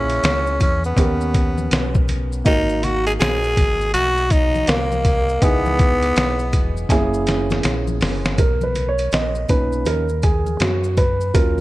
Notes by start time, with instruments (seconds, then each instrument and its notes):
Already playing: fingered electric bass A#1, grand piano A#3 C#4 E4 G#4, tenor saxophone C#4
0.09 closed hi-hat, maracas
0.23 fingered electric bass C#2, snare, closed hi-hat, maracas
0.47 maracas
0.60 fingered electric bass E2, tenor saxophone C#4, kick, closed hi-hat, low conga, maracas
0.84 tenor saxophone B3, maracas
0.96 fingered electric bass D#2, grand piano B3 C#4 G4 A#4, kick, closed hi-hat, high conga, maracas
1.21 maracas
1.34 kick, closed hi-hat, maracas
1.58 high conga, maracas
1.71 fingered electric bass B1, snare, closed hi-hat, maracas
1.95 kick, high conga, maracas
2.08 closed hi-hat, low conga, maracas
2.32 maracas
2.45 fingered electric bass G#1, grand piano A#3 D#4 F#4 A#4, tenor saxophone D#4, kick, closed hi-hat, maracas
2.69 maracas
2.83 tenor saxophone F#4, closed hi-hat, low conga, maracas
3.07 tenor saxophone G#4, closed hi-hat, maracas
3.20 fingered electric bass A#1, tenor saxophone G#4, snare, closed hi-hat, maracas
3.44 maracas
3.57 fingered electric bass G#1, kick, closed hi-hat, low conga, maracas
3.81 maracas
3.94 fingered electric bass B1, tenor saxophone F#4, closed hi-hat, high conga, maracas
4.18 maracas
4.30 tenor saxophone D#4, kick, closed hi-hat, maracas
4.55 high conga, maracas
4.67 fingered electric bass C2, tenor saxophone A#3, snare, closed hi-hat, maracas
4.92 high conga, maracas
5.05 kick, closed hi-hat, low conga, maracas
5.29 maracas
5.41 fingered electric bass C#2, grand piano B3 D#4 E4 G#4, tenor saxophone B3, kick, closed hi-hat, maracas
5.66 high conga, maracas
5.79 kick, closed hi-hat, high conga, low conga, maracas
6.02 closed hi-hat, maracas
6.16 fingered electric bass B1, snare, closed hi-hat, maracas
6.39 maracas
6.53 fingered electric bass E1, kick, closed hi-hat, low conga, maracas
6.77 maracas
6.89 fingered electric bass F#1, grand piano A#3 C#4 E4 G#4, kick, snare, closed hi-hat, high conga, maracas
7.14 maracas
7.27 snare, closed hi-hat, maracas
7.50 snare, high conga, maracas
7.63 fingered electric bass A#1, snare, closed hi-hat, maracas
7.87 high conga, maracas
8.01 fingered electric bass F#1, snare, open hi-hat, low conga, maracas
8.25 snare, maracas
8.38 fingered electric bass B1, grand piano A#4, kick, closed hi-hat, maracas
8.61 grand piano B4, high conga, maracas
8.75 closed hi-hat, low conga, maracas
8.89 grand piano C#5
8.98 closed hi-hat, maracas
9.12 fingered electric bass A#1, grand piano D#5, snare, closed hi-hat, maracas
9.35 maracas
9.49 fingered electric bass B1, grand piano A#2 C#4 D#4 B4, kick, closed hi-hat, low conga, maracas
9.72 maracas
9.85 fingered electric bass D#2, grand piano A#4, closed hi-hat, high conga, maracas
10.09 maracas
10.22 grand piano G#4, kick, closed hi-hat, maracas
10.46 high conga, maracas
10.60 fingered electric bass F#2, grand piano F#4, snare, closed hi-hat, maracas
10.84 maracas
10.97 grand piano B4, kick, closed hi-hat, low conga, maracas
11.21 maracas
11.34 fingered electric bass D#2, grand piano F#3 C#4 F4 A#4, kick, closed hi-hat, maracas